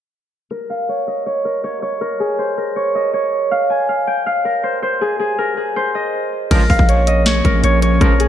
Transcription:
0.51 A#4
0.70 F5
0.89 C#5
1.07 D#5
1.26 C#5
1.45 A#4
1.64 C#5
1.82 C#5
2.01 A#4
2.20 G#4
2.39 C5
2.58 A#4
2.76 C#5
2.95 D#5
3.13 C#5
3.51 F5
3.70 G#5
3.89 F5
4.07 G5
4.26 F5
4.45 A#4
4.63 C5
4.82 C5
5.01 G#4
5.19 G#4
5.38 A#4
5.57 G#4
5.76 C5
5.95 D#5
6.51 A#1 C#2 A#2 F3 A#3 C#4 G#4 A#4, kick, closed hi-hat, crash
6.70 A#1 F5, kick, open hi-hat
6.79 A#1, kick
6.89 C#5, closed hi-hat
7.07 D#5, closed hi-hat
7.26 C#5, snare, closed hi-hat
7.45 A#1 A#4, kick, closed hi-hat
7.64 A#1 C#5, closed hi-hat
7.82 C#5, closed hi-hat
8.01 A#1 C#2 A#2 F3 A#4, kick, closed hi-hat
8.20 G#4, closed hi-hat

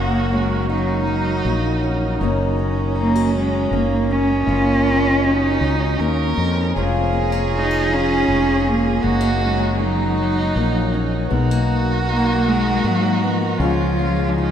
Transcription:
Already playing: F#1 F#2 F#3 A#3 C#4 D#4 F#4 C#5 F5 A#5
0.33 G#3 C#4
0.69 F#3 D#4
1.07 F#3
1.45 A#1 A#3
1.84 C#4
2.21 F#1 F#2 D#3 A#3 C#4 D#4 F#4 C#5 D#5
2.59 C#4
2.96 D#4
3.00 A#3
3.15 F#4
3.34 D#3 G#3
3.71 F#1 A#3
4.11 C#4
4.47 F#1 A#3 F4
4.88 C#4
5.24 D#4 F#4
5.61 C#2 D#3
5.99 D#2 A#3 A#4
6.38 F2 C#4
6.74 F1 F2 F3 G#3 C#4 F4 G#4 G#5
6.79 F4
7.13 A#3
7.32 C#4
7.50 D#4
7.55 D#4
7.71 F4
7.89 F3
7.94 C#4
8.28 F1 G#3
8.66 A#3 C#4
9.02 F#1 F#2 G#3 D#4 F#4 F#5
9.07 C#5
9.21 A#3
9.41 C#4
9.47 G#3
9.79 F#3 D#4
10.18 F#3
10.56 A#1 A#3
10.94 C#4
11.29 B1 B2 G#3 F#4 A#4 A#5
11.51 A#3
12.09 A#3 D#4
12.47 D#3 G#3
12.84 G#2 F#3 A#3
13.23 F3 B3
13.57 C#2 C#3 F3 F4 G#4 C#5 G#5
13.62 G#3 C#4 F4
13.99 C#4
14.29 D4
14.35 D#4 F4

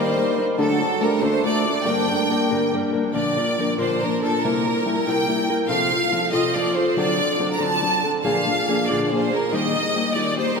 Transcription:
Already playing: D#3 G3 A#3 D#4 A#4 C5
0.00 G3
0.17 G3 A#3 D#4 A#4
0.38 A#3 D#4 A#4
0.58 D3 F#3 A3 D4 F#4 A4
0.80 D4 F#4 A4
1.01 G3 A3 D4 F#4 A4 A#4
1.22 D3 A3 D4 F#4 A4 C5
1.44 A3 D4 F#4 A4 D5
1.65 D4 F#4 A4
1.84 G2 D3 G3 A#3 D4 A#4 G5
2.08 G3 A#3 D4 A#4
2.30 G3 A#3 D4 A#4
2.50 G2 D3 G3 A#3 D4 A#4
2.74 G3 A#3 D4 A#4
2.93 G3 A#3 D4 A#4
3.13 A#2 D3 F3 A#3 D4 A#4 D5
3.38 F3 A#3 D4 A#4
3.58 F3 A#3 D4 A#4
3.78 A#2 D3 F3 A#3 D4 A#4 C5
4.02 F3 A#3 D4 A#4
4.22 F3 A#3 D4 A4 A#4
4.42 C3 G3 A#3 E4 A#4
4.66 A#3 E4 A#4
4.86 G3 A#3 E4 A#4
5.06 C3 G3 A#3 E4 A#4 G5
5.28 G3 A#3 E4 A#4
5.50 A#3 E4 A#4
5.67 C3 F3 C4 F4 A4 F5
5.92 C4 F4 A4
6.12 F3 C4 F4 A4
6.32 C3 F3 C4 F4 A4 D#5
6.55 F3 C4 F4 A4 D5
6.76 C4 F4 A4 C5
6.96 D3 F#3 C4 D4 A4 D5
7.19 C4 D4 A4
7.39 F#3 C4 D4 A4
7.54 A#5
7.59 D3 F#3 C4 D4 A4 A5
7.82 F#3 C4 D4 A4
8.04 C4 D4 A4
8.24 A#2 D3 F3 A#3 D4 G#4 F5
8.47 F3 A#3 D4 G#4
8.68 F3 A#3 D4 G#4
8.86 D4 G#4 D5
8.90 A#2 D3 F3 A#3
9.05 D5
9.11 F3 A#3 D4 G#4 C5
9.31 F3 A#3 D4 G#4 A#4
9.52 D#3 G3 A#3 D#4 G4 D#5
9.76 A#3 D#4 G4
9.96 G3 A#3 D#4 G4
10.14 D#3 G3 A#3 D#4 G4 D5
10.37 G3 A#3 D#4 G4 C5
10.57 A#4

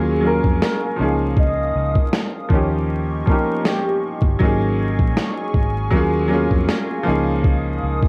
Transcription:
Already playing: D#2 F#3 A#3 C#4 F4 G#4 F5 G#5 C#6
0.20 F#3 A#3 C#4
0.25 F4 A#4
0.44 F2, kick
0.62 A#4, snare
0.96 C#2 F3 A#3 C#4 A#4 D#6
1.01 D#4 G#4
1.37 D#5, kick
1.75 C#2
1.95 kick
2.13 snare
2.49 D#2 F3 A#3 C#4 G4 C#5 D#5 C#6, kick
2.54 D#4 G4
3.26 F3 A#3 C#4 A#4, kick
3.30 D#4 G4
3.65 G4, snare
4.22 G1, kick
4.39 G#1 F#3 A#3 C#4 G#4 G#5 C#6, kick
4.44 D#4 G#4
4.99 A#1, kick
5.17 snare
5.54 G#1, kick
5.90 D#2 F#3 A#3 C#4 F5, kick
5.95 F4 G#4
6.28 F#3 A#3 C#4
6.33 F4 G#4
6.51 F2, kick
6.69 snare
7.03 F3 A#3 C#4 A#4 D#6
7.07 C#2 D#4 G#4
7.44 kick
7.83 C#2
8.03 kick

